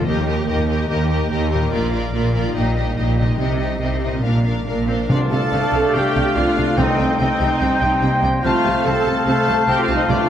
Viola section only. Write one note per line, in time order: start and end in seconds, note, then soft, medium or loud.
0.07 0.25 G4 medium
0.26 0.46 G4 medium
0.47 0.66 G4 soft
0.68 0.88 G4 soft
0.89 1.08 G4 soft
1.09 1.29 G4 soft
1.30 1.49 G4 soft
1.51 1.71 G4 soft
1.71 1.92 F4 medium
1.93 2.13 F4 medium
2.15 2.34 F4 soft
2.35 2.55 F4 soft
2.56 2.75 D#4 medium
2.77 2.95 D#4 soft
2.97 3.17 D#4 soft
3.18 3.38 D#4 soft
3.39 3.59 D#4 soft
3.60 3.80 D#4 soft
3.81 4.01 D#4 soft
4.02 4.23 D#4 soft
4.24 4.45 D4 soft
4.46 4.65 D4 soft
4.66 4.87 D4 soft
4.88 4.96 C4 medium
4.88 5.09 D4 soft
5.10 5.31 D4 medium
5.31 5.93 A4 medium
5.94 6.36 G4 medium
6.37 6.78 F4 medium
6.78 7.18 D#4 medium
7.20 8.22 D#4 medium
8.45 8.83 F4 medium
8.85 9.26 A4 medium
9.27 9.68 A4 medium
9.69 9.82 G4 medium
9.82 9.96 F4 medium
9.96 10.09 D#4 medium
10.09 10.29 F4 medium